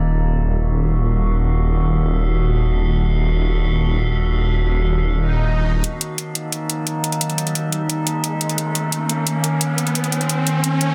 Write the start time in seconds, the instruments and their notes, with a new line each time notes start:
Already playing: detuned saw bass D#1, synth drone D#3 A#3 D#4
0.35 detuned saw bass D#1, synth drone F#4
5.15 swell
5.84 synth drone D#3 A#3 D#4, closed hi-hat, riser
6.01 closed hi-hat
6.18 closed hi-hat
6.35 closed hi-hat
6.52 closed hi-hat
6.70 closed hi-hat
6.87 closed hi-hat
7.04 closed hi-hat
7.12 closed hi-hat
7.21 closed hi-hat
7.30 closed hi-hat
7.38 closed hi-hat
7.47 closed hi-hat
7.55 closed hi-hat
7.72 closed hi-hat
7.90 closed hi-hat
8.07 closed hi-hat
8.24 closed hi-hat
8.41 closed hi-hat
8.49 closed hi-hat
8.58 synth drone C#4, closed hi-hat
8.75 closed hi-hat
8.92 closed hi-hat
9.09 closed hi-hat
9.27 closed hi-hat
9.44 closed hi-hat
9.61 closed hi-hat
9.78 closed hi-hat
9.87 closed hi-hat
9.95 closed hi-hat
10.04 closed hi-hat
10.12 closed hi-hat
10.21 closed hi-hat
10.29 closed hi-hat
10.47 closed hi-hat
10.64 closed hi-hat
10.81 closed hi-hat